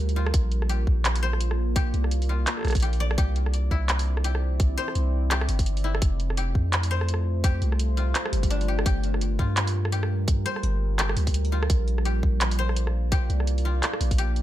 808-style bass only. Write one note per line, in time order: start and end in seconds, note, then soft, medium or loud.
0.00 0.33 D2 loud
0.34 0.86 A#1 loud
0.87 1.92 A#1 loud
1.94 2.46 C2 loud
2.65 3.17 A#1 loud
3.18 3.70 C2 loud
3.71 4.76 C2 medium
4.96 5.48 C2 loud
5.49 6.01 G1 loud
6.02 6.54 F1 loud
6.55 7.61 F2 loud
7.62 8.14 C2 loud
8.33 8.85 G1 loud
8.86 9.38 G1 medium
9.39 10.45 G2 medium
10.63 11.15 G1 loud
11.17 11.69 D2 loud
11.70 12.22 A#1 loud
12.23 13.29 A#1 loud
13.30 13.82 C2 medium
14.01 14.42 A#1 medium